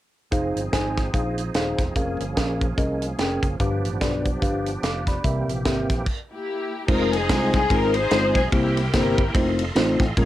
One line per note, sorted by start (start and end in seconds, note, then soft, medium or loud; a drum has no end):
0.31 0.53 F1 medium
0.31 5.20 F3 medium
0.31 1.94 C4 medium
0.31 1.94 D#4 medium
0.31 0.59 D#4 medium
0.31 3.56 G#4 medium
0.31 0.59 G#4 medium
0.31 0.59 C5 medium
0.31 0.59 F5 medium
0.31 kick medium
0.31 closed hi-hat medium
0.56 0.70 G1 medium
0.56 closed hi-hat medium
0.73 1.08 G#1 medium
0.73 1.00 D#4 medium
0.73 1.00 G#4 medium
0.73 1.00 C5 medium
0.73 1.00 G#5 medium
0.73 kick medium
0.73 snare loud
0.73 closed hi-hat medium
0.97 kick medium
0.97 snare soft
0.97 closed hi-hat medium
1.14 1.49 A#1 medium
1.14 1.41 D#4 medium
1.14 1.41 G#4 medium
1.14 1.41 C5 medium
1.14 1.41 F5 medium
1.14 kick loud
1.14 closed hi-hat medium
1.38 closed hi-hat medium
1.54 1.75 D#1 medium
1.54 1.82 D#4 medium
1.54 1.82 G#4 medium
1.54 1.82 C5 medium
1.54 1.82 F5 medium
1.54 snare medium
1.54 closed hi-hat medium
1.78 1.93 E1 medium
1.78 kick medium
1.78 snare soft
1.78 closed hi-hat medium
1.95 2.17 F1 loud
1.95 3.58 A#3 medium
1.95 3.58 C#4 medium
1.95 2.23 C#4 medium
1.95 2.23 G#4 medium
1.95 2.23 A#4 medium
1.95 2.23 F5 medium
1.95 kick medium
1.95 closed hi-hat medium
2.20 2.34 G1 medium
2.20 closed hi-hat medium
2.37 2.72 A#1 medium
2.37 2.64 C#4 medium
2.37 2.64 G#4 medium
2.37 2.64 A#4 medium
2.37 2.64 F5 medium
2.37 kick medium
2.37 snare loud
2.37 closed hi-hat loud
2.61 kick medium
2.61 closed hi-hat medium
2.77 3.13 C2 medium
2.77 3.05 C#4 medium
2.77 3.05 G#4 medium
2.77 3.05 A#4 medium
2.77 3.05 D#5 medium
2.77 kick loud
2.77 closed hi-hat medium
3.02 closed hi-hat medium
3.18 3.39 F1 medium
3.18 3.46 C#4 medium
3.18 3.46 G#4 medium
3.18 3.46 A#4 medium
3.18 3.46 G5 medium
3.18 snare loud
3.18 closed hi-hat medium
3.43 3.57 F#1 medium
3.43 kick loud
3.43 closed hi-hat medium
3.60 3.81 G1 loud
3.60 4.22 G2 medium
3.60 5.23 B3 medium
3.60 3.87 D4 medium
3.60 5.23 D4 medium
3.60 3.87 G4 medium
3.60 5.23 G4 medium
3.60 3.87 B4 medium
3.60 3.87 F5 medium
3.60 kick medium
3.60 closed hi-hat medium
3.85 3.99 A1 medium
3.85 closed hi-hat medium
4.01 4.36 B1 medium
4.01 4.28 D4 medium
4.01 4.28 G4 medium
4.01 4.28 B4 medium
4.01 4.28 D5 medium
4.01 kick medium
4.01 snare loud
4.01 closed hi-hat medium
4.25 kick medium
4.25 closed hi-hat medium
4.42 4.77 G1 medium
4.42 4.69 D4 medium
4.42 4.69 G4 medium
4.42 4.69 B4 medium
4.42 4.69 F5 medium
4.42 kick loud
4.42 closed hi-hat medium
4.66 closed hi-hat medium
4.83 5.18 F1 medium
4.83 5.07 F5 medium
4.83 5.06 D6 medium
4.83 snare medium
4.83 closed hi-hat medium
5.07 5.47 D5 soft
5.07 5.47 B5 medium
5.07 kick medium
5.07 snare soft
5.07 closed hi-hat medium
5.24 5.45 C2 medium
5.24 5.86 C3 medium
5.24 6.06 E3 medium
5.24 6.06 A#3 medium
5.24 5.51 C4 medium
5.24 6.06 C4 medium
5.24 5.51 G4 medium
5.24 6.06 G4 medium
5.24 5.51 A#4 medium
5.24 5.51 E5 medium
5.24 kick medium
5.24 closed hi-hat medium
5.48 5.62 A#1 medium
5.48 closed hi-hat medium
5.65 5.86 G#1 medium
5.65 5.92 C4 medium
5.65 5.92 G4 medium
5.65 5.92 A#4 medium
5.65 5.92 E5 medium
5.65 kick medium
5.65 snare loud
5.65 closed hi-hat medium
5.90 6.04 A#1 medium
5.90 kick medium
5.90 snare soft
5.90 closed hi-hat medium
6.06 kick medium
6.06 crash medium
6.32 6.85 A#3 medium
6.32 6.85 E4 medium
6.32 6.85 G4 medium
6.88 7.31 F1 loud
6.88 7.15 G#3 medium
6.88 7.15 C4 medium
6.88 7.15 D#4 medium
6.88 7.13 D#4 medium
6.88 7.15 F4 medium
6.88 8.51 G#4 medium
6.88 7.13 A#4 loud
6.88 7.15 C5 medium
6.88 8.51 D#5 medium
6.88 8.51 F5 medium
6.88 8.51 C6 medium
6.88 kick loud
6.88 crash medium
7.13 7.92 C4 medium
7.13 7.71 D#4 medium
7.13 7.53 G#4 loud
7.13 ride medium
7.29 7.64 C2 medium
7.29 7.56 G#3 medium
7.29 7.57 C4 medium
7.29 7.57 D#4 medium
7.29 7.57 F4 medium
7.29 7.57 C5 medium
7.29 kick medium
7.29 snare loud
7.29 ride medium
7.53 7.70 G#4 loud
7.53 kick loud
7.53 snare soft
7.53 ride soft
7.70 8.05 G#1 medium
7.70 7.98 G#3 medium
7.70 7.98 C4 medium
7.70 7.98 D#4 medium
7.70 7.94 D#4 medium
7.70 7.98 F4 medium
7.70 7.96 A#4 loud
7.70 7.98 C5 medium
7.70 kick loud
7.70 ride medium
7.94 8.49 D#4 medium
7.94 8.35 G#4 medium
7.94 8.36 C5 loud
7.94 ride medium
8.11 8.32 G1 medium
8.11 8.38 G#3 medium
8.11 8.39 C4 medium
8.11 8.39 D#4 medium
8.11 8.39 F4 medium
8.11 8.39 C5 medium
8.11 snare loud
8.11 ride medium
8.35 8.50 B1 medium
8.35 8.53 G#4 medium
8.35 kick loud
8.35 snare soft
8.35 ride medium
8.52 8.88 C2 loud
8.52 9.14 C3 medium
8.52 8.79 A#3 medium
8.52 9.31 A#3 medium
8.52 8.80 C4 medium
8.52 8.80 E4 medium
8.52 8.93 E4 medium
8.52 8.91 G4 medium
8.52 8.80 G4 medium
8.52 9.34 A#4 medium
8.52 8.80 C5 medium
8.52 9.34 E5 medium
8.52 9.34 G5 medium
8.52 10.15 C6 medium
8.52 kick loud
8.52 ride medium
8.77 ride medium
8.94 9.29 G1 medium
8.94 9.21 A#3 medium
8.94 9.21 C4 medium
8.94 9.21 E4 medium
8.94 9.33 E4 medium
8.94 9.21 G4 medium
8.94 9.33 G4 medium
8.94 9.35 A#4 medium
8.94 9.21 C5 medium
8.94 kick medium
8.94 snare loud
8.94 ride medium
9.18 kick loud
9.18 ride soft
9.34 9.70 F1 medium
9.34 9.62 A3 medium
9.34 9.62 C4 medium
9.34 9.62 D#4 medium
9.34 9.62 F4 medium
9.34 10.16 A4 medium
9.34 9.62 C5 medium
9.34 10.16 D#5 medium
9.34 10.25 F5 medium
9.34 kick loud
9.34 ride medium
9.59 ride medium
9.75 9.97 A1 loud
9.75 10.03 A3 medium
9.75 10.03 C4 medium
9.75 10.03 D#4 medium
9.75 10.03 F4 medium
9.75 10.03 C5 loud
9.75 snare loud
9.75 ride medium
10.00 10.14 A1 medium
10.00 kick loud
10.00 snare soft
10.00 ride medium
10.17 10.25 A#1 loud
10.17 10.25 A#2 medium
10.17 10.25 G#3 medium
10.17 10.25 A#3 medium
10.17 10.25 C#4 medium
10.17 10.25 F4 medium
10.17 10.25 G#4 medium
10.17 10.25 A#4 loud
10.17 10.25 C#5 medium
10.17 10.25 A#5 medium
10.17 kick loud
10.17 ride medium